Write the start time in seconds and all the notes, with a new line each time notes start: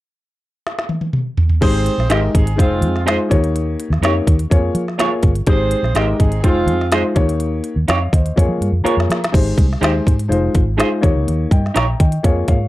0.67 snare
0.79 snare
0.89 high tom
1.01 high tom
1.13 mid tom
1.37 floor tom
1.50 floor tom
1.61 G#1 G#3 C4 D#4 G4 G#4 C5, kick, crash
1.86 closed hi-hat
1.98 A#1, snare
2.09 G#1 G#3 D#4 G4 A#4 C5 D#5, snare, closed hi-hat
2.34 G#1 C4 D#4 G#4, kick, closed hi-hat
2.47 closed hi-hat
2.56 F1 G#3 C4 D#4 F4 C5, kick, closed hi-hat
2.81 F2, closed hi-hat
2.96 snare
3.05 G#3 D#4 F4 G#4 C5, snare, closed hi-hat
3.29 D#2 A#3 D#4 G4 C#5, kick, closed hi-hat
3.44 closed hi-hat
3.56 closed hi-hat
3.80 closed hi-hat
3.90 D#2, snare
4.01 F2 A#3 D#4 G4 C#5, snare, closed hi-hat
4.27 D#2, kick, closed hi-hat
4.39 closed hi-hat
4.50 F2 A#3 F4 G#4 C#5, kick, closed hi-hat
4.74 F3, closed hi-hat
4.88 snare
4.98 A#3 F4 G#4 A#4 C#5, snare, closed hi-hat
5.23 G1, kick, closed hi-hat
5.36 closed hi-hat
5.47 G#1 G#3 C4 D#4 G4 G#4 C5, kick, closed hi-hat
5.71 closed hi-hat
5.83 A#1, snare
5.94 G#1 G#3 D#4 G4 A#4 C5 D#5, snare, closed hi-hat
6.19 G#1 C4 D#4 G#4, kick, closed hi-hat
6.32 closed hi-hat
6.43 F1 G#3 C4 D#4 F4 C5, kick, closed hi-hat
6.66 F2, closed hi-hat
6.81 snare
6.91 G#3 D#4 F4 G#4 C5, snare, closed hi-hat
7.15 D#2 A#3 D#4 G4 C#5, kick, closed hi-hat
7.29 closed hi-hat
7.40 closed hi-hat
7.64 closed hi-hat
7.76 D#2
7.88 F2 D#4 G4 C#5 F5, snare, closed hi-hat
8.13 D#2 C5 D#5, kick, closed hi-hat
8.26 closed hi-hat
8.36 F2 A#3 F4 G#4 C#5, kick, closed hi-hat
8.49 F3
8.61 G2, closed hi-hat
8.72 F2
8.84 A#3 F4 G#4 A#4 C#5 A#5, muted fingered electric bass stroke, closed hi-hat
8.97 F2, snare
9.09 F3, snare, closed hi-hat
9.24 snare, closed hi-hat
9.32 G#1 G#3 D#4 G4 C5, kick, closed hi-hat, crash
9.57 C2, kick, closed hi-hat
9.73 snare
9.81 D#2 G#3 D#4 G4 C5, snare, closed hi-hat
10.07 G#2, kick, closed hi-hat
10.19 closed hi-hat
10.28 F1 G#3 D#4 F4 C5, closed hi-hat
10.54 G#1, kick, closed hi-hat
10.77 G#3 D#4 F4 G#4 C5, snare, closed hi-hat
11.01 D#2 A#3 D#4 G4 C#5, kick, closed hi-hat
11.15 C#2
11.28 D#2, closed hi-hat
11.51 G2 D#5 G5, kick, closed hi-hat
11.66 snare
11.74 A#1 D#4 G4 C#5 G5 A#5, snare, closed hi-hat
12.00 D#3 D#5 G5, kick, closed hi-hat
12.12 closed hi-hat
12.23 F2 A#3 F4 G#4 C#5, kick, closed hi-hat
12.48 G#2 C#5 F5, kick, closed hi-hat